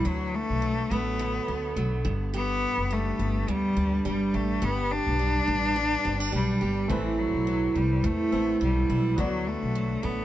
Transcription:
Already playing: steel-string acoustic guitar E3 B3 C4
0.05 upright bass D2, steel-string acoustic guitar D3 F#4, cello F#3
0.35 cello A3
0.50 upright bass B1
0.62 steel-string acoustic guitar F#3
0.91 upright bass A1, steel-string acoustic guitar A3, cello B3
1.19 steel-string acoustic guitar D3
1.48 upright bass D2, steel-string acoustic guitar B3
1.76 upright bass B1, steel-string acoustic guitar F#3
2.05 upright bass G1, steel-string acoustic guitar G2
2.34 steel-string acoustic guitar G2 G4, cello B3
2.78 upright bass F#1
2.91 steel-string acoustic guitar G3, cello A3
3.19 upright bass G1, steel-string acoustic guitar B3
3.48 upright bass D2, steel-string acoustic guitar G2, cello G3
3.76 upright bass D2, steel-string acoustic guitar D4
4.05 upright bass G1, steel-string acoustic guitar G3, cello G3
4.34 upright bass A1, cello A3, steel-string acoustic guitar G4
4.62 upright bass G1, steel-string acoustic guitar G2 G4, cello B3
4.92 cello D4
5.07 upright bass B1
5.19 steel-string acoustic guitar G3
5.47 upright bass A1, steel-string acoustic guitar B3
5.76 steel-string acoustic guitar G2
6.05 upright bass G1, steel-string acoustic guitar C4
6.20 steel-string acoustic guitar D4
6.32 upright bass B1, steel-string acoustic guitar G3, cello G3
6.61 upright bass G1, steel-string acoustic guitar G4
6.88 upright bass A1, steel-string acoustic guitar A2 E4, cello E3, grand piano A3 C4, kick
6.92 grand piano B4
7.20 cello F#3
7.34 upright bass B1
7.47 steel-string acoustic guitar E3
7.75 upright bass C2, cello G3, steel-string acoustic guitar C4
8.04 upright bass E2, steel-string acoustic guitar A2, cello A3, kick
8.31 upright bass A1, grand piano A3 C4 A4, steel-string acoustic guitar B3
8.61 upright bass B1, steel-string acoustic guitar E3, cello G3
8.90 upright bass B1, steel-string acoustic guitar E4
9.16 upright bass D2, steel-string acoustic guitar D3 F#4, cello F#3, grand piano B3 F#4 D5, kick
9.47 cello A3
9.62 upright bass B1
9.75 steel-string acoustic guitar F#3
10.03 upright bass A1, steel-string acoustic guitar A3, cello B3

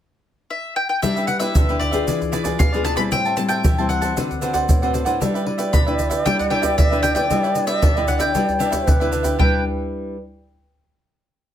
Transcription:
0.50 mandolin E5
0.76 mandolin G5
0.89 mandolin G5
1.02 nylon-string guitar G3 D4 E4 B4, cavaquinho D4 G4 B4 E5, mandolin E5, pandeiro, shaker, surdo
1.16 cavaquinho G4 B4 E5, pandeiro, shaker
1.27 mandolin F#5, muted cavaquinho stroke, pandeiro, shaker
1.40 nylon-string guitar D4 E4 B4, cavaquinho G4 B4 E5, mandolin E5, pandeiro, shaker
1.55 nylon-string guitar D3, cavaquinho D4 G4 B4 E5, pandeiro, shaker, surdo
1.69 nylon-string guitar D4 E4 B4, cavaquinho G4 B4 E5, pandeiro, shaker
1.79 mandolin D5, pandeiro, surdo
1.91 nylon-string guitar D4 F4 G#4, cavaquinho G4 B4 E5, pandeiro, shaker, surdo
2.07 nylon-string guitar E3, cavaquinho E4 G#4 B4 D5, pandeiro, shaker, surdo
2.21 muted cavaquinho stroke, pandeiro, shaker, surdo
2.32 cavaquinho E4 G#4 B4 D5, pandeiro, shaker
2.44 nylon-string guitar D4 F4 G#4, cavaquinho G#4 B4 D5, pandeiro, shaker, surdo
2.59 nylon-string guitar B2, mandolin F5, pandeiro, shaker, surdo
2.72 nylon-string guitar D4 F4 G#4, cavaquinho G#4 B4 D5, pandeiro, shaker
2.83 cavaquinho E4 G#4 B4 D5, mandolin A5, pandeiro, shaker
2.96 nylon-string guitar G3 C4 E4, cavaquinho G#4 B4 D5, mandolin B5, pandeiro, shaker, surdo
3.11 nylon-string guitar A2, cavaquinho G4 C5 E5 A5, mandolin G5, pandeiro, shaker, surdo
3.25 cavaquinho C5 E5 A5, pandeiro, shaker
3.37 nylon-string guitar G3 C4 E4, mandolin A5, muted cavaquinho stroke, pandeiro, shaker
3.48 cavaquinho C5 E5 A5, mandolin G5, pandeiro, shaker
3.64 nylon-string guitar E3, cavaquinho G4 C5 E5 A5, pandeiro, shaker, surdo
3.78 nylon-string guitar G3 C4 E4, cavaquinho C5 E5 A5, pandeiro, shaker
3.89 mandolin F#5, pandeiro, shaker
4.01 cavaquinho C5 E5 A5, pandeiro, shaker, surdo
4.16 nylon-string guitar D3 C4 F#4 B4, cavaquinho D4 C5 D5 F#5, pandeiro, shaker, surdo
4.31 muted cavaquinho stroke, pandeiro, shaker, surdo
4.41 nylon-string guitar C4 F#4 B4, cavaquinho D4 C5 D5 F#5, pandeiro, shaker
4.53 cavaquinho C5 D5 F#5, pandeiro, shaker, surdo
4.69 nylon-string guitar A2, pandeiro, shaker, surdo
4.82 nylon-string guitar C4 F#4 B4, cavaquinho C5 D5 F#5, pandeiro, shaker
4.93 cavaquinho D4 C5 D5 F#5, pandeiro, shaker
5.05 nylon-string guitar D4 E4 B4, cavaquinho C5 D5 F#5, pandeiro, shaker, surdo
5.20 nylon-string guitar G3, cavaquinho D4 G4 B4 E5, shakuhachi D5, pandeiro, shaker, surdo
5.34 cavaquinho G4 B4 E5, pandeiro, shaker
5.46 nylon-string guitar D4 E4 B4, muted cavaquinho stroke, pandeiro
5.58 cavaquinho G4 B4 E5, pandeiro, shaker
5.73 nylon-string guitar D3, cavaquinho D4 G4 B4 E5, mandolin B5, pandeiro, shaker, surdo
5.87 nylon-string guitar D4 E4 B4, cavaquinho G4 B4 E5, pandeiro, shaker
5.99 pandeiro, shaker, surdo
6.10 cavaquinho G4 B4 E5, pandeiro, shaker, surdo
6.24 nylon-string guitar G3 D4 E4 B4, cavaquinho D4 G4 B4 E5, mandolin G5, pandeiro, shaker, surdo
6.38 mandolin F#5, muted cavaquinho stroke, pandeiro, shaker, surdo
6.50 cavaquinho D4 G4 B4 E5, nylon-string guitar D4 E4 B4, mandolin G5, pandeiro
6.62 cavaquinho G4 B4 E5, pandeiro, shaker, surdo
6.78 nylon-string guitar D3, mandolin E5, pandeiro, shaker, surdo
6.91 nylon-string guitar D4 E4 B4, cavaquinho G4 B4 E5, pandeiro, shaker
7.02 cavaquinho D4 G4 B4 E5, mandolin G5, pandeiro, shaker
7.14 nylon-string guitar D4 E4 B4, cavaquinho G4 B4 E5, mandolin G5, pandeiro, shaker, surdo
7.30 nylon-string guitar G3 D4 E4 B4, cavaquinho D4 G4 B4 E5, pandeiro, shaker, surdo
7.43 cavaquinho G4 B4 E5, pandeiro, shaker
7.55 nylon-string guitar D4 E4 B4, muted cavaquinho stroke, pandeiro, shaker
7.67 cavaquinho G4 B4 E5, mandolin E5, pandeiro, shaker
7.82 nylon-string guitar D3, cavaquinho D4 G4 B4 E5, pandeiro, shaker, surdo
7.96 nylon-string guitar D4 E4 B4, cavaquinho G4 B4 E5, pandeiro, shaker
8.08 mandolin F#5, pandeiro, shaker, surdo
8.19 cavaquinho G4 B4 E5, mandolin G5, pandeiro, shaker, surdo
8.34 nylon-string guitar G3 D4 E4 B4, cavaquinho D4 G4 B4 E5, pandeiro, shaker, surdo
8.48 muted cavaquinho stroke, pandeiro, shaker, surdo
8.59 cavaquinho D4 G4 B4 E5, nylon-string guitar D4 E4 B4, pandeiro, shaker
8.71 cavaquinho G4 B4 E5, pandeiro, shaker, surdo
8.87 nylon-string guitar D3, shakuhachi B4, pandeiro, shaker, surdo
9.00 nylon-string guitar D4 E4 B4, cavaquinho G4 B4 E5, pandeiro, shaker
9.11 cavaquinho D4 G4 B4 E5, pandeiro, shaker
9.23 cavaquinho G4 B4 E5, pandeiro, shaker, surdo
9.38 nylon-string guitar G3 D4 E4 B4, cavaquinho D4 G4 B4 E5, shakuhachi B4, mandolin G5, surdo

